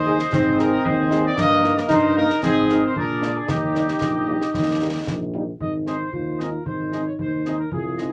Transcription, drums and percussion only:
0.19 snare medium
0.33 concert bass drum medium
0.33 snare medium
0.59 snare soft
0.85 concert bass drum medium
1.11 snare medium
1.38 concert bass drum medium
1.38 snare medium
1.38 crash soft
1.64 snare soft
1.78 snare medium
1.90 concert bass drum medium
1.90 snare medium
2.30 snare medium
2.43 concert bass drum medium
2.43 snare medium
2.69 snare soft
2.96 concert bass drum medium
3.22 snare medium
3.48 concert bass drum medium
3.48 snare medium
3.75 snare soft
3.88 snare soft
4.01 concert bass drum medium
4.01 snare medium
4.42 snare medium
4.54 concert bass drum medium
4.54 snare medium
5.07 concert bass drum medium
5.07 snare medium
5.60 concert bass drum medium
5.87 snare soft
6.13 concert bass drum soft
6.40 snare soft
6.66 concert bass drum medium
6.92 snare soft
7.19 concert bass drum medium
7.45 snare soft
7.71 concert bass drum medium
7.98 snare soft

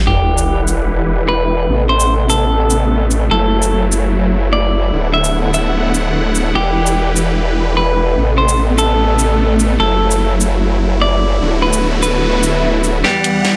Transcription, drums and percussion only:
0.38 shaker medium
0.68 shaker medium
2.00 shaker medium
2.30 shaker medium
2.70 shaker medium
3.11 shaker medium
3.62 shaker medium
3.92 shaker medium
5.24 shaker medium
5.54 shaker medium
5.95 shaker medium
6.35 shaker medium
6.86 shaker medium
7.16 shaker medium
8.49 shaker medium
8.78 shaker medium
9.19 shaker medium
9.60 shaker medium
10.11 shaker medium
10.41 shaker medium
11.73 shaker medium
12.03 shaker medium
12.43 shaker medium
12.84 shaker medium
13.04 snare soft
13.24 closed hi-hat medium
13.45 snare soft
13.45 closed hi-hat soft

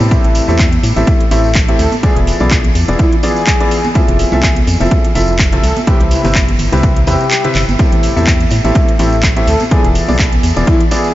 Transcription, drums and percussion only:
0.00 tambourine medium
0.00 high conga medium
0.11 kick loud
0.11 closed hi-hat medium
0.11 tambourine soft
0.24 closed hi-hat soft
0.35 open hi-hat loud
0.35 tambourine medium
0.49 tambourine medium
0.49 high conga medium
0.59 kick loud
0.59 clap loud
0.59 closed hi-hat medium
0.59 tambourine soft
0.72 closed hi-hat medium
0.72 high conga medium
0.83 open hi-hat loud
0.83 tambourine medium
0.96 closed hi-hat soft
0.96 tambourine medium
0.96 high conga medium
1.07 kick loud
1.07 closed hi-hat medium
1.07 tambourine soft
1.21 closed hi-hat soft
1.31 open hi-hat loud
1.31 tambourine loud
1.44 tambourine medium
1.55 kick loud
1.55 clap loud
1.55 closed hi-hat medium
1.69 closed hi-hat soft
1.79 open hi-hat loud
1.79 tambourine medium
1.92 closed hi-hat soft
1.92 tambourine medium
1.92 high conga medium
2.03 kick loud
2.03 closed hi-hat medium
2.03 tambourine soft
2.16 closed hi-hat medium
2.27 open hi-hat loud
2.27 tambourine medium
2.40 tambourine soft
2.40 high conga medium
2.51 kick loud
2.51 clap loud
2.51 closed hi-hat medium
2.51 tambourine soft
2.64 closed hi-hat medium
2.64 high conga medium
2.75 open hi-hat loud
2.75 tambourine medium
2.88 closed hi-hat soft
2.88 tambourine soft
2.88 high conga medium
2.99 kick loud
2.99 closed hi-hat medium
2.99 tambourine soft
3.12 closed hi-hat medium
3.23 open hi-hat loud
3.23 tambourine medium
3.36 tambourine medium
3.47 kick loud
3.47 clap loud
3.47 closed hi-hat medium
3.47 tambourine soft
3.60 closed hi-hat medium
3.71 open hi-hat loud
3.71 tambourine medium
3.84 closed hi-hat soft
3.84 tambourine soft
3.84 high conga medium
3.95 kick loud
3.95 closed hi-hat medium
3.95 tambourine soft
4.08 closed hi-hat medium
4.19 open hi-hat loud
4.19 tambourine medium
4.32 tambourine soft
4.32 high conga medium
4.43 kick loud
4.43 clap loud
4.43 closed hi-hat medium
4.43 tambourine soft
4.56 closed hi-hat medium
4.56 high conga medium
4.67 open hi-hat loud
4.67 tambourine medium
4.80 closed hi-hat soft
4.80 tambourine medium
4.80 high conga medium
4.91 kick loud
4.91 closed hi-hat medium
5.05 closed hi-hat medium
5.15 open hi-hat loud
5.15 tambourine medium
5.28 tambourine soft
5.39 kick loud
5.39 clap loud
5.39 closed hi-hat medium
5.53 closed hi-hat medium
5.63 open hi-hat loud
5.63 tambourine medium
5.77 closed hi-hat soft
5.77 tambourine soft
5.77 high conga medium
5.87 kick loud
5.87 closed hi-hat medium
5.87 tambourine soft
6.01 closed hi-hat medium
6.11 open hi-hat loud
6.11 tambourine medium
6.24 open hi-hat medium
6.24 tambourine medium
6.24 high conga medium
6.35 kick loud
6.35 clap loud
6.35 closed hi-hat medium
6.35 tambourine soft
6.48 closed hi-hat medium
6.48 high conga medium
6.59 open hi-hat loud
6.59 tambourine medium
6.72 closed hi-hat soft
6.72 tambourine soft
6.72 high conga medium
6.83 kick loud
6.83 closed hi-hat medium
6.83 tambourine soft
6.97 closed hi-hat medium
7.07 open hi-hat loud
7.07 tambourine medium
7.20 closed hi-hat soft
7.20 tambourine soft
7.31 clap loud
7.31 closed hi-hat medium
7.31 tambourine soft
7.45 closed hi-hat medium
7.55 clap medium
7.55 open hi-hat loud
7.55 tambourine medium
7.69 closed hi-hat soft
7.69 tambourine soft
7.69 high conga loud
7.79 kick loud
7.79 closed hi-hat medium
7.79 tambourine soft
7.92 closed hi-hat medium
8.03 open hi-hat loud
8.03 tambourine medium
8.17 tambourine medium
8.17 high conga medium
8.27 kick loud
8.27 clap loud
8.27 closed hi-hat medium
8.27 tambourine soft
8.41 closed hi-hat medium
8.41 high conga medium
8.50 open hi-hat loud
8.50 tambourine medium
8.65 closed hi-hat soft
8.65 tambourine medium
8.65 high conga medium
8.75 kick loud
8.75 closed hi-hat medium
8.75 tambourine soft
8.89 closed hi-hat medium
8.99 open hi-hat loud
8.99 tambourine medium
9.12 tambourine medium
9.23 kick loud
9.23 clap loud
9.23 closed hi-hat medium
9.23 tambourine soft
9.37 closed hi-hat medium
9.47 open hi-hat loud
9.47 tambourine medium
9.60 closed hi-hat soft
9.60 tambourine medium
9.60 high conga medium
9.71 kick loud
9.71 closed hi-hat medium
9.71 tambourine soft
9.85 closed hi-hat medium
9.95 open hi-hat loud
9.95 tambourine loud
10.08 tambourine medium
10.08 high conga loud
10.19 kick loud
10.19 clap loud
10.19 closed hi-hat medium
10.19 tambourine soft
10.33 closed hi-hat medium
10.33 high conga medium
10.43 open hi-hat loud
10.43 tambourine medium
10.56 closed hi-hat soft
10.56 tambourine medium
10.56 high conga medium
10.67 kick loud
10.67 closed hi-hat medium
10.81 closed hi-hat medium
10.91 open hi-hat loud
10.91 tambourine medium
11.04 tambourine medium

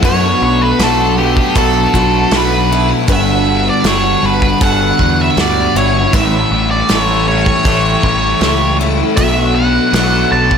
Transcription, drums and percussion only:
0.03 kick loud
0.03 open hi-hat medium
0.79 snare loud
0.79 open hi-hat soft
1.37 kick medium
1.55 kick loud
1.55 open hi-hat soft
1.94 kick medium
2.31 snare loud
2.31 open hi-hat medium
3.08 kick loud
3.08 open hi-hat soft
3.84 snare loud
3.84 open hi-hat medium
4.42 kick medium
4.61 kick loud
4.61 open hi-hat soft
4.99 kick medium
5.37 snare loud
5.37 open hi-hat soft
6.13 kick loud
6.13 open hi-hat medium
6.89 snare loud
6.89 open hi-hat medium
7.46 kick medium
7.65 kick loud
7.65 open hi-hat soft
8.03 kick medium
8.41 snare loud
8.41 open hi-hat soft
9.17 kick loud
9.17 open hi-hat medium
9.94 snare loud
9.94 open hi-hat medium
10.51 kick medium

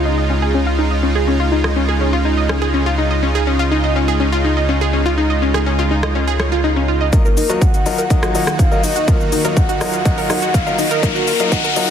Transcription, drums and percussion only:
1.64 cross-stick medium
2.49 cross-stick medium
5.54 cross-stick medium
6.03 cross-stick medium
6.40 cross-stick medium
7.13 kick loud
7.13 closed hi-hat medium
7.13 shaker soft
7.25 shaker soft
7.37 open hi-hat loud
7.37 shaker medium
7.50 closed hi-hat medium
7.50 shaker soft
7.62 kick loud
7.62 closed hi-hat medium
7.62 shaker soft
7.74 closed hi-hat soft
7.74 shaker soft
7.86 open hi-hat loud
7.86 shaker medium
7.98 closed hi-hat medium
7.98 shaker soft
8.10 kick loud
8.10 closed hi-hat medium
8.10 shaker soft
8.23 cross-stick medium
8.23 closed hi-hat soft
8.23 shaker soft
8.35 open hi-hat loud
8.35 shaker medium
8.47 cross-stick medium
8.47 closed hi-hat medium
8.47 shaker soft
8.59 kick loud
8.59 closed hi-hat medium
8.59 shaker soft
8.72 shaker soft
8.84 open hi-hat medium
8.84 shaker medium
8.96 closed hi-hat medium
8.96 shaker soft
9.08 kick loud
9.08 closed hi-hat medium
9.08 shaker soft
9.20 shaker soft
9.32 open hi-hat loud
9.32 shaker medium
9.45 closed hi-hat medium
9.45 shaker soft
9.57 kick loud
9.57 closed hi-hat medium
9.57 shaker soft
9.69 closed hi-hat soft
9.69 shaker soft
9.81 cross-stick medium
9.81 open hi-hat loud
9.81 shaker medium
9.93 closed hi-hat medium
9.93 shaker soft
10.05 kick loud
10.05 closed hi-hat medium
10.05 shaker soft
10.18 open hi-hat medium
10.18 shaker soft
10.30 cross-stick medium
10.30 open hi-hat loud
10.30 shaker medium
10.42 closed hi-hat medium
10.42 shaker soft
10.54 kick loud
10.54 closed hi-hat medium
10.54 shaker soft
10.67 shaker soft
10.79 open hi-hat loud
10.79 shaker medium
10.91 closed hi-hat medium
10.91 shaker soft
11.03 kick loud
11.03 closed hi-hat medium
11.03 shaker soft
11.16 shaker soft
11.27 open hi-hat loud
11.27 shaker medium
11.40 closed hi-hat medium
11.40 shaker soft
11.52 kick loud
11.52 closed hi-hat medium
11.52 shaker soft
11.64 closed hi-hat soft
11.64 shaker soft
11.76 open hi-hat loud
11.76 shaker medium

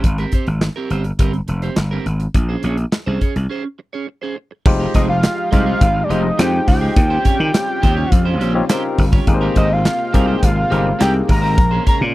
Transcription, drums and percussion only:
0.04 kick loud
0.04 closed hi-hat medium
0.18 closed hi-hat soft
0.32 kick medium
0.32 closed hi-hat medium
0.47 closed hi-hat soft
0.61 snare loud
0.61 clap medium
0.90 closed hi-hat medium
1.04 closed hi-hat medium
1.19 kick loud
1.19 closed hi-hat medium
1.33 closed hi-hat soft
1.48 closed hi-hat medium
1.62 closed hi-hat medium
1.77 snare loud
1.77 clap loud
2.06 closed hi-hat medium
2.20 closed hi-hat soft
2.34 kick loud
2.34 closed hi-hat medium
2.63 closed hi-hat medium
2.78 closed hi-hat medium
2.92 snare medium
2.92 clap medium
3.21 kick medium
3.21 closed hi-hat medium
3.36 closed hi-hat medium
4.66 kick loud
4.66 crash loud
4.94 kick medium
4.94 closed hi-hat medium
5.23 snare loud
5.23 clap medium
5.23 closed hi-hat medium
5.52 kick medium
5.52 closed hi-hat medium
5.81 kick loud
5.81 closed hi-hat medium
6.11 closed hi-hat medium
6.39 snare loud
6.39 clap loud
6.39 closed hi-hat loud
6.68 kick medium
6.68 open hi-hat medium
6.96 kick loud
6.96 closed hi-hat medium
7.25 kick medium
7.25 closed hi-hat medium
7.54 snare loud
7.54 clap medium
7.54 closed hi-hat medium
7.83 kick medium
7.83 closed hi-hat medium
8.12 kick loud
8.12 closed hi-hat medium
8.41 closed hi-hat medium
8.69 snare loud
8.69 clap loud
8.69 closed hi-hat loud
8.98 kick medium
8.98 open hi-hat medium
9.13 kick loud
9.27 kick loud
9.27 closed hi-hat medium
9.56 kick medium
9.56 closed hi-hat medium
9.85 snare loud
9.85 clap medium
9.85 closed hi-hat medium
10.14 kick medium
10.14 closed hi-hat medium
10.43 kick loud
10.43 closed hi-hat loud
10.72 closed hi-hat medium
11.00 snare loud
11.00 clap medium
11.00 closed hi-hat medium
11.29 kick loud
11.29 open hi-hat medium
11.58 kick loud
11.58 closed hi-hat loud
11.87 kick medium
11.87 closed hi-hat medium

